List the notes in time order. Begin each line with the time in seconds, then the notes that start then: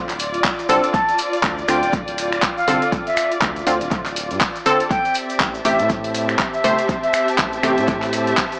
Already playing: D1 F4 D5
0.09 clap, open hi-hat, maracas
0.19 open hi-hat, maracas
0.34 closed hi-hat, maracas
0.44 kick, clap, closed hi-hat, maracas
0.59 closed hi-hat, maracas
0.69 C2 D3 C4 A4, open hi-hat, maracas
0.83 closed hi-hat, maracas
0.94 A5, kick, closed hi-hat, maracas
1.09 closed hi-hat, maracas
1.18 open hi-hat, maracas
1.33 closed hi-hat, maracas
1.43 D2, kick, clap, closed hi-hat, maracas
1.58 maracas
1.68 D2 D3 C4 F4 G5, finger snap, open hi-hat, maracas
1.83 D1, closed hi-hat, maracas
1.93 kick, closed hi-hat, maracas
2.08 open hi-hat, maracas
2.18 open hi-hat, maracas
2.33 finger snap, closed hi-hat, maracas
2.42 kick, clap, closed hi-hat, maracas
2.57 F5, maracas
2.67 C2 D3 C4 A4, open hi-hat, maracas
2.82 closed hi-hat, maracas
2.92 kick, closed hi-hat, maracas
3.07 E5, closed hi-hat, maracas
3.17 finger snap, open hi-hat, maracas
3.31 closed hi-hat, maracas
3.42 D2, kick, clap, closed hi-hat, maracas
3.56 closed hi-hat, maracas
3.67 D2 D3 C4 F4, open hi-hat, maracas
3.81 D1, closed hi-hat, maracas
3.91 kick, closed hi-hat, maracas
4.06 clap, open hi-hat, maracas
4.16 open hi-hat, maracas
4.31 G2, closed hi-hat, maracas
4.41 kick, clap, closed hi-hat, maracas
4.56 closed hi-hat, maracas
4.66 D3 C4 A4, open hi-hat, maracas
4.80 closed hi-hat, maracas
4.90 C4 G5, kick, closed hi-hat, maracas
5.04 E5, closed hi-hat, maracas
5.14 G4, open hi-hat, maracas
5.30 closed hi-hat, maracas
5.40 A1, kick, clap, closed hi-hat, maracas
5.54 A5, maracas
5.65 A1 C3 A3 G4 E5, open hi-hat, maracas
5.79 A2, closed hi-hat, maracas
5.90 kick, closed hi-hat, maracas
6.04 open hi-hat, maracas
6.14 open hi-hat, maracas
6.29 finger snap, closed hi-hat, maracas
6.39 kick, clap, closed hi-hat, maracas
6.54 E5, maracas
6.64 G1 C3 A3 C5, open hi-hat, maracas
6.78 closed hi-hat, maracas
6.89 kick, closed hi-hat, maracas
7.03 E5, closed hi-hat, maracas
7.14 finger snap, open hi-hat, maracas
7.28 closed hi-hat, maracas
7.38 A1, kick, clap, closed hi-hat, maracas
7.53 closed hi-hat, maracas
7.63 A1 C3 A3 G4, finger snap, open hi-hat, maracas
7.78 A2, closed hi-hat, maracas
7.88 kick, closed hi-hat, maracas
8.02 clap, open hi-hat, maracas
8.13 open hi-hat, maracas
8.27 closed hi-hat, maracas
8.37 kick, clap, closed hi-hat, maracas
8.52 closed hi-hat, maracas